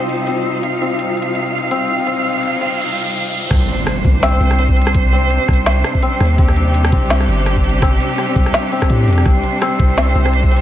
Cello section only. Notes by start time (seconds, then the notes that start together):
Already playing: C3 G3 D#4 C5
0.63 F5
3.51 C3 G3 D4 C5
6.38 G4
9.26 C5